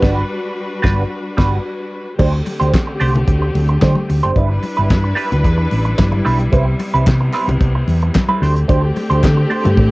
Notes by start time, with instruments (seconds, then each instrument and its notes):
Already playing: string section G3 D4 F#4 B4
0.01 fingered electric bass G1, clean electric guitar G3 D4 F#4 B4, kick, snare, crash
0.82 fingered electric bass G1, clean electric guitar G3 D4 F#4 B4, kick, snare
1.37 fingered electric bass G1, clean electric guitar G3 D4 F#4 B4, kick, snare, crash
2.19 fingered electric bass D2, string section D3 A3 C4 G4, clean electric guitar A3 D4 G4 C5, kick, crash, muted conga
2.34 muted clean electric guitar stroke
2.46 muted clean electric guitar stroke, open hi-hat, muted conga
2.60 fingered electric bass D2, clean electric guitar A3 D4 G4 C5, closed hi-hat
2.73 muted clean electric guitar stroke, kick, snare, clap, closed hi-hat, high conga
2.87 muted clean electric guitar stroke
3.00 fingered electric bass C2, clean electric guitar A3 D4 G4 C5, open hi-hat
3.15 muted clean electric guitar stroke, closed hi-hat, low conga
3.28 fingered electric bass D2, muted clean electric guitar stroke, kick, closed hi-hat, muted conga
3.42 muted clean electric guitar stroke
3.55 fingered electric bass D2, open hi-hat, muted conga
3.69 muted clean electric guitar stroke, closed hi-hat
3.81 fingered electric bass D3, clean electric guitar A3 D4 G4 C5, kick, snare, clap, closed hi-hat, high conga
3.95 muted clean electric guitar stroke, high conga
4.09 fingered electric bass D2, muted clean electric guitar stroke, open hi-hat
4.23 fingered electric bass F#1, clean electric guitar A3 D4 G4 C5, closed hi-hat
4.36 fingered electric bass G1, clean electric guitar G3 D4 E4 B4, string section G3 D4 E4 B4, kick, closed hi-hat, muted conga
4.50 muted clean electric guitar stroke
4.63 muted clean electric guitar stroke, open hi-hat, muted conga
4.77 fingered electric bass G1, clean electric guitar G3 D4 E4 B4, closed hi-hat
4.90 fingered electric bass G2, muted clean electric guitar stroke, kick, snare, clap, closed hi-hat, high conga
5.04 muted clean electric guitar stroke
5.15 clean electric guitar G3 D4 E4 B4, open hi-hat
5.30 fingered electric bass D2, muted clean electric guitar stroke, closed hi-hat, low conga
5.43 fingered electric bass E2, muted clean electric guitar stroke, kick, closed hi-hat, muted conga
5.58 muted clean electric guitar stroke
5.71 fingered electric bass A1, open hi-hat, muted conga
5.85 muted clean electric guitar stroke, closed hi-hat
5.98 fingered electric bass G1, muted clean electric guitar stroke, kick, snare, clap, closed hi-hat, high conga
6.12 muted clean electric guitar stroke, high conga
6.25 fingered electric bass B1, clean electric guitar G3 D4 E4 B4, open hi-hat
6.40 muted clean electric guitar stroke, closed hi-hat
6.52 fingered electric bass C2, string section C3 B3, clean electric guitar G3 C4 E4 B4, kick, closed hi-hat, muted conga
6.67 muted clean electric guitar stroke
6.79 muted clean electric guitar stroke, open hi-hat, muted conga
6.94 fingered electric bass C2, clean electric guitar G3 C4 E4 B4, closed hi-hat
7.07 fingered electric bass C3, kick, snare, clap, closed hi-hat, high conga
7.21 muted clean electric guitar stroke
7.33 clean electric guitar G3 C4 E4 B4, clap, open hi-hat
7.48 fingered electric bass C2, muted clean electric guitar stroke, closed hi-hat, low conga
7.60 fingered electric bass C2, muted clean electric guitar stroke, kick, closed hi-hat, muted conga
7.75 muted clean electric guitar stroke
7.88 fingered electric bass E2, open hi-hat, muted conga
8.02 muted clean electric guitar stroke, closed hi-hat
8.15 muted clean electric guitar stroke, kick, snare, clap, closed hi-hat, high conga
8.28 clean electric guitar G3 C4 E4 B4, high conga
8.41 fingered electric bass D2, string section D3 A3 C4 G4, clean electric guitar A3 D4 G4 C5, snare, open hi-hat
8.55 muted clean electric guitar stroke, closed hi-hat
8.68 fingered electric bass D2, clean electric guitar A3 D4 G4 C5, kick, closed hi-hat, muted conga
8.96 muted clean electric guitar stroke, open hi-hat, muted conga
9.10 fingered electric bass D2, clean electric guitar A3 D4 G4 C5, closed hi-hat
9.23 fingered electric bass D3, muted clean electric guitar stroke, kick, snare, clap, closed hi-hat, high conga
9.37 muted clean electric guitar stroke
9.50 clean electric guitar A3 D4 G4 C5, open hi-hat
9.65 fingered electric bass G2, muted clean electric guitar stroke, closed hi-hat, low conga
9.77 fingered electric bass A2, muted clean electric guitar stroke, kick, high tom